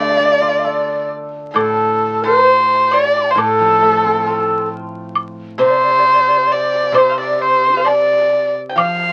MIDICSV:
0, 0, Header, 1, 6, 480
1, 0, Start_track
1, 0, Tempo, 921659
1, 808, Time_signature, 2, 2, 24, 8
1, 1287, Tempo, 895522
1, 3687, Tempo, 911854
1, 4833, End_track
2, 0, Start_track
2, 0, Title_t, "Pipa"
2, 0, Program_c, 0, 105
2, 0, Note_on_c, 0, 74, 78
2, 553, Note_off_c, 0, 74, 0
2, 811, Note_on_c, 0, 69, 64
2, 1148, Note_off_c, 0, 69, 0
2, 1165, Note_on_c, 0, 72, 78
2, 1507, Note_off_c, 0, 72, 0
2, 1524, Note_on_c, 0, 74, 87
2, 1751, Note_off_c, 0, 74, 0
2, 1770, Note_on_c, 0, 69, 76
2, 2466, Note_off_c, 0, 69, 0
2, 2958, Note_on_c, 0, 72, 72
2, 3366, Note_off_c, 0, 72, 0
2, 3366, Note_on_c, 0, 70, 72
2, 3430, Note_off_c, 0, 70, 0
2, 3430, Note_on_c, 0, 69, 72
2, 3663, Note_off_c, 0, 69, 0
2, 3684, Note_on_c, 0, 72, 73
2, 3762, Note_off_c, 0, 72, 0
2, 3764, Note_on_c, 0, 77, 54
2, 3803, Note_off_c, 0, 77, 0
2, 3807, Note_on_c, 0, 74, 68
2, 4107, Note_off_c, 0, 74, 0
2, 4119, Note_on_c, 0, 77, 53
2, 4157, Note_off_c, 0, 77, 0
2, 4159, Note_on_c, 0, 74, 77
2, 4503, Note_off_c, 0, 74, 0
2, 4606, Note_on_c, 0, 79, 54
2, 4645, Note_off_c, 0, 79, 0
2, 4647, Note_on_c, 0, 77, 79
2, 4833, Note_off_c, 0, 77, 0
2, 4833, End_track
3, 0, Start_track
3, 0, Title_t, "Xiao"
3, 0, Program_c, 1, 77
3, 12, Note_on_c, 1, 74, 60
3, 49, Note_on_c, 1, 77, 60
3, 57, Note_off_c, 1, 74, 0
3, 91, Note_on_c, 1, 74, 53
3, 99, Note_off_c, 1, 77, 0
3, 133, Note_on_c, 1, 77, 60
3, 141, Note_off_c, 1, 74, 0
3, 168, Note_on_c, 1, 74, 54
3, 176, Note_off_c, 1, 77, 0
3, 216, Note_on_c, 1, 77, 66
3, 223, Note_off_c, 1, 74, 0
3, 256, Note_on_c, 1, 74, 66
3, 264, Note_off_c, 1, 77, 0
3, 309, Note_on_c, 1, 77, 58
3, 316, Note_off_c, 1, 74, 0
3, 352, Note_on_c, 1, 74, 75
3, 360, Note_off_c, 1, 77, 0
3, 569, Note_off_c, 1, 74, 0
3, 809, Note_on_c, 1, 69, 70
3, 1160, Note_on_c, 1, 72, 85
3, 1168, Note_off_c, 1, 69, 0
3, 1531, Note_on_c, 1, 74, 84
3, 1540, Note_off_c, 1, 72, 0
3, 1652, Note_off_c, 1, 74, 0
3, 1655, Note_on_c, 1, 86, 33
3, 1678, Note_off_c, 1, 86, 0
3, 1681, Note_on_c, 1, 84, 38
3, 1692, Note_off_c, 1, 84, 0
3, 1693, Note_on_c, 1, 81, 37
3, 1709, Note_off_c, 1, 81, 0
3, 1712, Note_on_c, 1, 79, 42
3, 1725, Note_off_c, 1, 79, 0
3, 1729, Note_on_c, 1, 77, 44
3, 1739, Note_off_c, 1, 77, 0
3, 1740, Note_on_c, 1, 74, 47
3, 1758, Note_off_c, 1, 74, 0
3, 1761, Note_on_c, 1, 72, 49
3, 1781, Note_on_c, 1, 69, 85
3, 1790, Note_off_c, 1, 72, 0
3, 2255, Note_off_c, 1, 69, 0
3, 2258, Note_on_c, 1, 69, 67
3, 2476, Note_off_c, 1, 69, 0
3, 2977, Note_on_c, 1, 72, 59
3, 3018, Note_on_c, 1, 74, 57
3, 3026, Note_off_c, 1, 72, 0
3, 3058, Note_on_c, 1, 72, 58
3, 3066, Note_off_c, 1, 74, 0
3, 3094, Note_on_c, 1, 74, 59
3, 3102, Note_off_c, 1, 72, 0
3, 3134, Note_on_c, 1, 72, 64
3, 3142, Note_off_c, 1, 74, 0
3, 3175, Note_on_c, 1, 74, 59
3, 3183, Note_off_c, 1, 72, 0
3, 3210, Note_on_c, 1, 72, 61
3, 3218, Note_off_c, 1, 74, 0
3, 3255, Note_on_c, 1, 74, 64
3, 3263, Note_off_c, 1, 72, 0
3, 3290, Note_on_c, 1, 72, 60
3, 3298, Note_off_c, 1, 74, 0
3, 3330, Note_on_c, 1, 74, 65
3, 3338, Note_off_c, 1, 72, 0
3, 3382, Note_on_c, 1, 72, 62
3, 3390, Note_off_c, 1, 74, 0
3, 3429, Note_on_c, 1, 74, 59
3, 3437, Note_off_c, 1, 72, 0
3, 3467, Note_on_c, 1, 72, 65
3, 3475, Note_off_c, 1, 74, 0
3, 3681, Note_off_c, 1, 72, 0
3, 3685, Note_on_c, 1, 72, 70
3, 3810, Note_on_c, 1, 74, 67
3, 3818, Note_off_c, 1, 72, 0
3, 3885, Note_off_c, 1, 74, 0
3, 3885, Note_on_c, 1, 74, 46
3, 3926, Note_on_c, 1, 72, 64
3, 3934, Note_off_c, 1, 74, 0
3, 4074, Note_off_c, 1, 72, 0
3, 4077, Note_on_c, 1, 62, 36
3, 4088, Note_off_c, 1, 62, 0
3, 4090, Note_on_c, 1, 65, 36
3, 4106, Note_off_c, 1, 65, 0
3, 4109, Note_on_c, 1, 67, 39
3, 4119, Note_off_c, 1, 67, 0
3, 4120, Note_on_c, 1, 69, 39
3, 4135, Note_off_c, 1, 69, 0
3, 4138, Note_on_c, 1, 72, 40
3, 4159, Note_on_c, 1, 74, 77
3, 4167, Note_off_c, 1, 72, 0
3, 4524, Note_off_c, 1, 74, 0
3, 4637, Note_on_c, 1, 77, 79
3, 4833, Note_off_c, 1, 77, 0
3, 4833, End_track
4, 0, Start_track
4, 0, Title_t, "Erhu"
4, 0, Program_c, 2, 110
4, 0, Note_on_c, 2, 74, 98
4, 572, Note_off_c, 2, 74, 0
4, 809, Note_on_c, 2, 69, 71
4, 1146, Note_off_c, 2, 69, 0
4, 1173, Note_on_c, 2, 72, 96
4, 1536, Note_on_c, 2, 74, 86
4, 1544, Note_off_c, 2, 72, 0
4, 1734, Note_on_c, 2, 72, 59
4, 1742, Note_off_c, 2, 74, 0
4, 1777, Note_on_c, 2, 69, 89
4, 1785, Note_off_c, 2, 72, 0
4, 2491, Note_off_c, 2, 69, 0
4, 2978, Note_on_c, 2, 72, 95
4, 3457, Note_on_c, 2, 74, 83
4, 3465, Note_off_c, 2, 72, 0
4, 3701, Note_on_c, 2, 72, 79
4, 3709, Note_off_c, 2, 74, 0
4, 3813, Note_off_c, 2, 72, 0
4, 3822, Note_on_c, 2, 74, 75
4, 3890, Note_off_c, 2, 74, 0
4, 3890, Note_on_c, 2, 74, 64
4, 3935, Note_on_c, 2, 72, 83
4, 3943, Note_off_c, 2, 74, 0
4, 4177, Note_on_c, 2, 74, 83
4, 4185, Note_off_c, 2, 72, 0
4, 4533, Note_off_c, 2, 74, 0
4, 4652, Note_on_c, 2, 77, 89
4, 4833, Note_off_c, 2, 77, 0
4, 4833, End_track
5, 0, Start_track
5, 0, Title_t, "Guzheng"
5, 0, Program_c, 3, 107
5, 0, Note_on_c, 3, 50, 47
5, 0, Note_on_c, 3, 57, 41
5, 93, Note_on_c, 3, 62, 42
5, 213, Note_on_c, 3, 65, 41
5, 334, Note_on_c, 3, 69, 39
5, 801, Note_on_c, 3, 45, 52
5, 931, Note_off_c, 3, 57, 0
5, 1051, Note_off_c, 3, 62, 0
5, 1171, Note_off_c, 3, 65, 0
5, 1283, Note_off_c, 3, 50, 0
5, 1290, Note_off_c, 3, 69, 0
5, 1752, Note_off_c, 3, 45, 0
5, 1758, Note_on_c, 3, 45, 60
5, 1886, Note_on_c, 3, 53, 46
5, 2010, Note_on_c, 3, 57, 45
5, 2129, Note_on_c, 3, 60, 44
5, 2248, Note_on_c, 3, 65, 46
5, 2844, Note_off_c, 3, 53, 0
5, 2953, Note_on_c, 3, 48, 65
5, 2959, Note_off_c, 3, 45, 0
5, 2965, Note_off_c, 3, 57, 0
5, 3085, Note_off_c, 3, 60, 0
5, 3205, Note_off_c, 3, 65, 0
5, 3665, Note_off_c, 3, 48, 0
5, 3672, Note_on_c, 3, 48, 64
5, 4638, Note_on_c, 3, 53, 56
5, 4640, Note_off_c, 3, 48, 0
5, 4833, Note_off_c, 3, 53, 0
5, 4833, End_track
6, 0, Start_track
6, 0, Title_t, "Drums"
6, 811, Note_on_c, 9, 76, 58
6, 863, Note_off_c, 9, 76, 0
6, 1774, Note_on_c, 9, 76, 52
6, 1828, Note_off_c, 9, 76, 0
6, 2725, Note_on_c, 9, 76, 55
6, 2779, Note_off_c, 9, 76, 0
6, 3688, Note_on_c, 9, 76, 54
6, 3741, Note_off_c, 9, 76, 0
6, 4167, Note_on_c, 9, 77, 41
6, 4219, Note_off_c, 9, 77, 0
6, 4649, Note_on_c, 9, 76, 64
6, 4702, Note_off_c, 9, 76, 0
6, 4833, End_track
0, 0, End_of_file